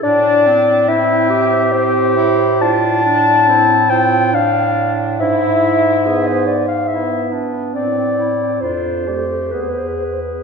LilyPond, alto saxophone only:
\new Staff \with { instrumentName = "Alto saxophone" } { \time 3/4 \key a \minor \tempo 4 = 70 d'4 c'4 c'8 e'8 | d'4 c'8 c'8 d'4 | e'4 b8 r8 b4 | c'4 d'8 a8 b4 | }